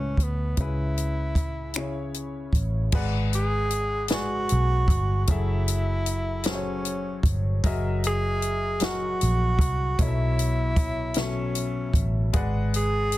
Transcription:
Already playing: C#2 A2 A3 C#4 F#4 B4
0.17 D2, kick, closed hi-hat
0.23 B3
0.57 C#2 C#3 C#4 E4 G#4 B4, kick, closed hi-hat
0.61 E4
0.98 closed hi-hat
1.35 kick, closed hi-hat
1.74 C#3 C#4 E4 G#4, finger snap, closed hi-hat
1.78 C#5
2.14 closed hi-hat
2.53 A1, kick, closed hi-hat
2.92 G#1 G#3 G#4 B4 D5 F#5, kick, crash
3.33 G#4, closed hi-hat
3.71 closed hi-hat
4.08 G#3 G#4 B4 D5, snare, closed hi-hat
4.12 F#4 G#5
4.49 B1, closed hi-hat
4.88 G1, kick, closed hi-hat
5.24 F#3 F#4, kick, closed hi-hat
5.29 F#1 E4 G#4 A4 E5
5.68 closed hi-hat
6.06 closed hi-hat
6.44 F#3 F#4 G#4, snare, closed hi-hat
6.48 C#4 A4 C5
6.55 C#5
6.85 closed hi-hat
7.23 G1, kick, closed hi-hat
7.64 F#1 F#3 F#4 G#4 A#4 D#5 E5, kick, closed hi-hat
8.04 G#4, closed hi-hat
8.42 closed hi-hat
8.80 F#3 F#4 G#4 A#4 D#5 F#5, snare, closed hi-hat
8.84 F#4
9.21 A#1, closed hi-hat
9.59 C2, kick, closed hi-hat
9.98 B1 B2 F#3 E4 A4 C#5 D#5, kick, closed hi-hat
10.08 E5
10.39 closed hi-hat
10.76 kick, closed hi-hat
11.14 B2 F#3 A4 C#5, snare, closed hi-hat
11.19 C#4 E5
11.55 closed hi-hat
11.94 A1, kick, closed hi-hat
12.33 G#3 G#4 B4 D5 F#5, kick, closed hi-hat
12.74 G#4, closed hi-hat
13.12 closed hi-hat

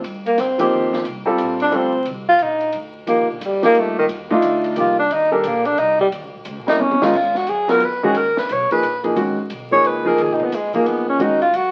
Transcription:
0.03 G2, ride
0.26 A#3, ride
0.38 F2 C4, snare, hi-hat pedal, ride
0.58 F3 A#3 C4 D#4 G4, kick, ride
0.73 D#2
0.93 snare
1.05 C2, ride
1.26 G3 C4 F4 A4
1.38 A#1, hi-hat pedal, ride
1.60 D4, ride
1.71 D2 G3 C4 F4 A4, ride
1.76 C4
2.05 C2, ride
2.29 F4
2.39 A#1 D#4, hi-hat pedal, ride
2.60 ride
2.73 D2, ride
3.07 D#2 F3 A#3 D#4 G4, ride
3.19 C2
3.29 A#1 D3
3.40 F2, hi-hat pedal, ride
3.45 G3
3.62 F3 A#3 D#4 G4, snare, ride
3.74 G2, ride
3.79 A3
3.99 D#3
4.08 D#2, ride
4.31 A3 D4 D#4 F4, kick
4.42 D2, hi-hat pedal, ride
4.64 ride
4.76 C2 F3 A#3 D#4 G4, hi-hat pedal, ride
4.80 F4
4.99 D4
5.10 D#2 D#4, ride
5.32 G3 D4 G4 A4 A#4
5.44 A#1 A#3, hi-hat pedal, ride
5.65 D4, ride
5.78 C2 D#4, ride
5.99 G3, kick
6.11 D#2, ride
6.22 C#2
6.34 A#1
6.45 C#2, hi-hat pedal, ride
6.58 A#1
6.67 G1 G3 A#3 C#4 D#4 E4, snare, ride
6.79 E2 C#4, high tom
6.91 high tom
7.02 D#3 G#3 C#4 D#4 F4, snare
7.13 G#2 F4, kick, crash
7.35 F#4, snare
7.47 F#2 G#4, hi-hat pedal, ride
7.68 F#3 B3 F4 A#4, snare, ride
7.80 F2 B4, ride
8.03 D#3 G#3 C#4 F#4 G#4
8.14 D#2 A#4, ride
8.37 B4, muted upright bass stroke, snare
8.49 B1 C#5, hi-hat pedal, ride
8.71 F3 A#3 D#4 G#4 B4, ride
8.82 A#1, hi-hat pedal, ride
9.03 F3 A#3 D#4 G#4, ride
9.15 G#1 D#3 G#3 C#4 F#4, ride
9.50 B1, hi-hat pedal, ride
9.71 F3 A#3 D#4 G#4 C#5
9.83 C#2 B4, ride
10.05 F3 A#3 D#4 G#4 A#4
10.17 D#2, ride
10.22 G#4
10.29 B1
10.34 D#4
10.40 G#1 B3, kick
10.50 F2, hi-hat pedal, ride
10.55 G#3
10.74 F3 A#3 D#4 G#4, kick, ride
10.84 F#2 B3, ride
11.09 C#4
11.19 G#2 D#3 G#3 C#4 D#4 F#4, ride
11.42 F4, ride
11.53 F#2 F#4, hi-hat pedal, ride

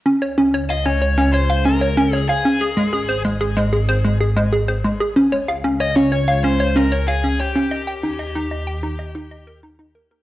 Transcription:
0.06 C#2 C#4
0.22 C#5
0.38 C#4
0.54 C#5
0.69 D#5 F5
0.86 C#4 C#5
1.02 C#5
1.18 C#4
1.33 C5 C#5
1.50 F5
1.65 C#4 A#4
1.81 C#5
1.97 C#4
2.13 G#4 C#5
2.29 G#4 F5
2.45 C#4
2.61 G#1 G#4
2.77 G#3
2.93 G#4
3.09 C5
3.25 G#3
3.41 G#4
3.57 G#3
3.73 G#4
3.89 C5
4.05 G#3
4.21 G#4
4.37 G#3
4.53 G#4
4.68 C5
4.84 G#3
5.00 G#4
5.16 C#2 C#4
5.32 C#5
5.48 F5
5.64 C#4
5.80 C#5 D#5
5.96 C#4 C#5
6.12 C#5
6.28 F5
6.44 C#4 C5
6.60 C#5
6.76 C#4 A#4
6.92 C#5
7.08 G#4 F5
7.24 C#4
7.40 G4 C#5
7.56 C#4
7.71 D#2 D#5
7.87 G5
8.03 D#4
8.19 D#5
8.35 D#4
8.51 D#5
8.67 G5
8.83 D#4
8.99 D#5
9.15 D#4
9.31 D#5
9.47 A#4
9.63 D#4
9.79 D#4
9.95 A#4
10.11 A#4

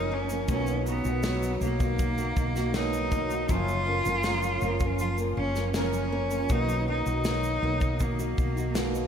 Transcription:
Already playing: F#1 F#2 C#3 F3 A#3 C#4 D#4 F4 A#4
0.10 F3 A#3 C#4 A#4
0.29 F3 A#3 C#4 A#4, shaker
0.48 B1 B2 D#3 F#3 A#3 C#4 D#4 F#4, kick, shaker
0.67 shaker
0.86 F#3 A#3 B3 D#4 F#4, shaker
1.05 B1 A#3 D#4 F#4, shaker
1.23 B2 F#3 D#4 F#4, snare, shaker
1.42 D#4, shaker
1.61 B1 F#3 A#3 D#4 F#4, shaker
1.80 A#3 D#4 F#4, kick, shaker
1.99 D#3, kick, shaker
2.17 A#3 D#4 F#4, shaker
2.37 B1 D#4, kick, shaker
2.55 A#3 D#4 F#4, snare, shaker
2.74 B2 F#3 A#3 D#4 F#4, snare, shaker
2.93 D#4, shaker
3.12 F#3 A#3 D#4 F#4, kick, shaker
3.30 A#3 D#4 F#4, shaker
3.49 F#1 F#2 C#3 F3 A#3 C#4 F4 A#4, kick, shaker
3.68 A#3, shaker
3.86 F3 A#3 C#4 A#4
4.05 F#1 F3 A#3 C#4 F4 A#4, shaker
4.24 F#2 C#3 F3 A#3 C#4 A#4, snare, shaker
4.43 C#4, shaker
4.61 F#1 F3 A#3 C#4 A#4, shaker
4.80 A#3 C#4 A#4, kick, shaker
4.84 F3
4.99 F3 F4, shaker
5.18 F3 A#3 C#4 A#4, shaker
5.37 F#1 C#4
5.55 F3 A#3 C#4 F4 A#4, snare, shaker
5.74 F#2 C#3 F3 A#3 C#4 A#4, snare, shaker
5.93 C#4, shaker
6.11 F3 A#3 C#4 A#4
6.31 F3 A#3 C#4 A#4, shaker
6.49 B1 B2 D#3 F#3 A#3 D#4 F#4, kick, shaker
6.69 A#3, shaker
6.86 F#3 A#3 D#4 F#4
7.06 B1 A#3 D#4 F#4, shaker
7.24 B2 F#3 A#3 D#4 F#4, snare, shaker
7.43 D#4, shaker
7.62 B1 F#3 A#3 D#4 F#4
7.81 D#4, kick, shaker
8.00 D#3 A#3, kick, shaker
8.19 A#3 D#4 F#4, shaker
8.38 B1 D#4, kick, shaker
8.56 A#3 D#4 F#4, shaker
8.74 B2 F#3 A#3 D#4 F#4, snare, shaker
8.95 D#4, shaker

